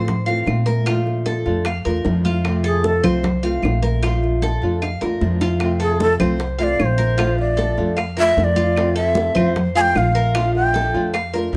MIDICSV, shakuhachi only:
0, 0, Header, 1, 2, 480
1, 0, Start_track
1, 0, Key_signature, -1, "major"
1, 0, Tempo, 395257
1, 1052, Time_signature, 4, 2, 24, 8
1, 14047, End_track
2, 0, Start_track
2, 0, Title_t, "Shakuhachi"
2, 0, Program_c, 0, 77
2, 3224, Note_on_c, 0, 68, 78
2, 3459, Note_on_c, 0, 69, 86
2, 3477, Note_off_c, 0, 68, 0
2, 3696, Note_off_c, 0, 69, 0
2, 7068, Note_on_c, 0, 68, 75
2, 7284, Note_off_c, 0, 68, 0
2, 7316, Note_on_c, 0, 69, 94
2, 7453, Note_off_c, 0, 69, 0
2, 8014, Note_on_c, 0, 76, 81
2, 8054, Note_on_c, 0, 74, 88
2, 8066, Note_off_c, 0, 76, 0
2, 8271, Note_on_c, 0, 73, 70
2, 8290, Note_off_c, 0, 74, 0
2, 8324, Note_on_c, 0, 72, 76
2, 8336, Note_off_c, 0, 73, 0
2, 8977, Note_off_c, 0, 72, 0
2, 8984, Note_on_c, 0, 74, 74
2, 9648, Note_off_c, 0, 74, 0
2, 9949, Note_on_c, 0, 76, 104
2, 10197, Note_off_c, 0, 76, 0
2, 10197, Note_on_c, 0, 76, 79
2, 10248, Note_on_c, 0, 74, 86
2, 10260, Note_off_c, 0, 76, 0
2, 10885, Note_off_c, 0, 74, 0
2, 10892, Note_on_c, 0, 76, 79
2, 11561, Note_off_c, 0, 76, 0
2, 11859, Note_on_c, 0, 80, 108
2, 11913, Note_on_c, 0, 79, 118
2, 11925, Note_off_c, 0, 80, 0
2, 12112, Note_on_c, 0, 77, 95
2, 12130, Note_off_c, 0, 79, 0
2, 12819, Note_off_c, 0, 77, 0
2, 12825, Note_on_c, 0, 79, 87
2, 13487, Note_off_c, 0, 79, 0
2, 14047, End_track
0, 0, End_of_file